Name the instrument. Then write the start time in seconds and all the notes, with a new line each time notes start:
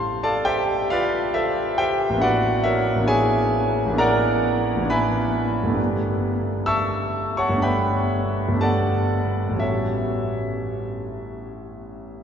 grand piano
Already playing: A1 G3 A3 C4 E4 C5 F5 A5 C6
0.23 A4 D5 F5 A5
0.45 G4 C5 E5 G5
0.90 F4 B4 D5 F5
1.34 A4 C5 E5
1.78 G4 C5 E5 G5
2.10 A1 A#3
2.15 B3 D4
2.20 E4 F#4 B4 D5 F#5
2.64 A#4 C#5 E5
2.95 A1 A#3
3.00 B3 D4
3.06 E4 G#4 C#5 E5 G#5
3.86 A1 A#3
3.91 B3 D4
3.97 E4 A#4 D5 F#5 A#5
4.76 A1
4.81 A#3 B3
4.85 D4 E4
4.90 B4 E5 G#5 B5
5.64 G1 A3
5.69 B3 D4
5.74 G4
6.66 E5 A5 C#6 E6
7.37 C#5 F#5 A5 C#6
7.49 G1 A3
7.55 B3 D4
7.60 G4 B4 E5 G5 B5
8.49 G1 A3
8.53 B3 D4
8.60 G4 A4 D5 F#5 A5
9.49 A1 G3
9.54 B3 C#4
9.59 F#4 A4 C#5 E5